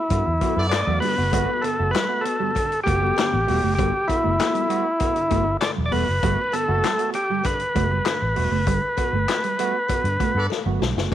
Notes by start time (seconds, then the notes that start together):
Already playing: E4
0.10 G2 B3 F#4, kick, closed hi-hat, cowbell
0.26 E2 G2 D3, muted clean electric guitar stroke
0.40 F#3 B3 F#4 A4, kick, closed hi-hat, cowbell
0.56 F#2 B3 A4 D5, muted clean electric guitar stroke
0.69 G2 D5, muted clean electric guitar stroke, snare, clap, closed hi-hat, cowbell
0.87 E2 F#3 A3 B3 F#4, muted clean electric guitar stroke
1.00 G2 D3 G3 B3 F#4 A4 B4, open hi-hat
1.17 F#1 A3 B3 F#4, muted clean electric guitar stroke
1.32 G1 G3 A3 A#3 B3 F4 F#4 G#4, kick, closed hi-hat, cowbell
1.45 B3 F#4 A4
1.62 G2 D3 B3 A4, closed hi-hat, cowbell
1.79 F#1 A3 B3 F#4, muted clean electric guitar stroke
1.91 G3 B4, closed hi-hat, cowbell
1.96 snare, clap
2.09 A3 B3 F#4, muted clean electric guitar stroke
2.21 A4, muted clean electric guitar stroke
2.25 B3 F#4 B4, closed hi-hat
2.39 G2 D3 G3 B3 F#4 A4
2.55 G2 D3, muted clean electric guitar stroke, kick, closed hi-hat, cowbell
2.72 muted clean electric guitar stroke, closed hi-hat
2.84 F#1 A3 B3 F#4 G4, kick, closed hi-hat, cowbell
3.01 G3 B3 F#4 A4
3.17 G2 D3 B3 F#4 A4, muted clean electric guitar stroke, snare, clap, closed hi-hat, cowbell
3.34 A1, muted clean electric guitar stroke
3.47 E1 G3 A3 B3 F#4 A4, open hi-hat
3.63 F#1 A3 B3 F#4, muted clean electric guitar stroke
3.75 G1 G2 D3 G3 B3 G4, kick, closed hi-hat, cowbell
3.80 F#4 A4
4.08 B3 E4 F#4, muted clean electric guitar stroke, kick, closed hi-hat, cowbell
4.23 F#1 A3 B3 F#4 A4
4.39 A#3 F4 G#4, muted clean electric guitar stroke, snare, clap, closed hi-hat, cowbell
4.52 G3 B3 F#4 A4, closed hi-hat
4.69 G3 A3 B3 F#4, closed hi-hat
4.86 muted clean electric guitar stroke
5.00 B3 F#4, kick, closed hi-hat, cowbell
5.16 G2 D3, muted clean electric guitar stroke, closed hi-hat
5.30 G1 A3 B3 F#4 A4, kick, closed hi-hat, cowbell
5.47 muted clean electric guitar stroke
5.61 G2 D3 D5, muted clean electric guitar stroke, snare, clap, closed hi-hat, cowbell
5.76 E1 F#3, muted clean electric guitar stroke
5.86 D5
5.91 E1 G3 A3 B3 F#4 A4 B4, open hi-hat
6.07 F#1 B3 F#4, muted clean electric guitar stroke
6.23 G1 G3 A3 B3 F#4, kick, closed hi-hat, cowbell
6.38 muted clean electric guitar stroke
6.52 G2 D3 B3 A4, closed hi-hat, cowbell
6.68 F#1 A3 B3 F#4
6.83 G3, snare, clap, closed hi-hat, cowbell
6.98 A3 B3 F#4, closed hi-hat
7.14 G4, muted clean electric guitar stroke, closed hi-hat
7.29 G2 D3 G3
7.44 G2 D3 B4, kick, closed hi-hat, cowbell
7.59 closed hi-hat
7.75 F#1 A3 B3 F#4, kick, closed hi-hat, cowbell
7.91 G3 B3 F#4
8.05 G2 D3, snare, clap, closed hi-hat, cowbell
8.22 A1
8.36 E1 G3 A3 B3 F#4, open hi-hat
8.52 F#1 A3 B3 F#4
8.67 G1 G2 D3 G3, kick, closed hi-hat, cowbell
8.97 B3 F#4, muted clean electric guitar stroke, kick, closed hi-hat, cowbell
9.13 G1 A3
9.28 snare, clap, closed hi-hat, cowbell
9.44 G3, closed hi-hat
9.59 G3 A3 B3 F#4, closed hi-hat
9.88 B3 F#4, kick, closed hi-hat, cowbell
10.04 G2 D3, closed hi-hat
10.20 A3 B3 F#4, kick, closed hi-hat, cowbell
10.35 G2 B3 A4 D5
10.50 muted clean electric guitar stroke, snare, cowbell
10.66 G1 F#3 A3 B3 F#4
10.80 B1 G2 D3 G3, snare
10.96 F#1 A3 B3 F#4, snare
11.11 D4